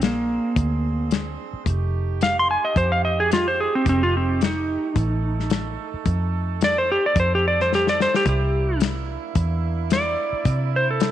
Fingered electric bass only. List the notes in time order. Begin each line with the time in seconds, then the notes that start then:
Already playing: A#1
0.56 D2
1.53 muted fingered electric bass stroke
1.66 F1
2.76 F2
3.86 F1
4.96 A1
5.94 muted fingered electric bass stroke
6.06 F2
7.16 F2
8.26 C2
9.35 E2
10.33 muted fingered electric bass stroke
10.45 C3